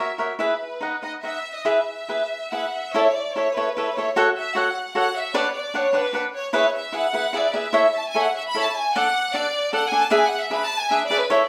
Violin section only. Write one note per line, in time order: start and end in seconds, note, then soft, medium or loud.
0.00 0.20 E5 medium
0.38 0.98 B4 medium
1.02 1.12 D#5 medium
1.23 1.53 E5 medium
1.55 1.66 D#5 medium
1.66 2.72 E5 medium
2.50 2.71 F#5 medium
2.73 2.93 E5 medium
2.92 2.98 C#5 medium
2.99 3.04 D5 medium
3.03 3.14 C#5 medium
3.13 3.34 D5 medium
3.33 3.54 C#5 medium
3.54 3.73 B4 medium
3.74 3.94 B4 medium
3.96 4.14 C#5 medium
4.15 4.24 C#5 medium
4.36 4.54 E5 medium
4.56 4.94 F#5 medium
4.96 5.14 F#5 medium
5.16 5.35 E5 medium
5.36 5.55 C#5 medium
5.57 5.75 D5 medium
5.76 5.95 C#5 medium
5.97 6.13 B4 medium
6.14 6.23 B4 medium
6.34 6.52 C#5 medium
6.54 6.72 C#5 medium
6.77 6.95 E5 medium
6.94 7.34 F#5 medium
7.36 7.55 D5 medium
7.54 7.95 E5 medium
7.96 8.08 A5 medium
8.08 8.20 G#5 medium
8.21 8.35 F#5 medium
8.37 8.42 E5 medium
8.48 8.60 B5 loud
8.62 8.75 A5 medium
8.75 8.94 G#5 loud
8.95 9.32 F#5 loud
9.34 9.73 D5 medium
9.74 9.86 F#5 medium
9.88 10.00 G#5 loud
10.01 10.13 A5 loud
10.14 10.25 G#5 medium
10.27 10.39 F#5 loud
10.39 10.51 E5 medium
10.53 10.65 B5 loud
10.65 10.78 A5 loud
10.78 10.91 G#5 loud
10.91 11.04 E5 medium
11.07 11.17 D5 loud
11.18 11.30 B4 medium
11.32 11.44 C#5 medium
11.44 11.49 D5 medium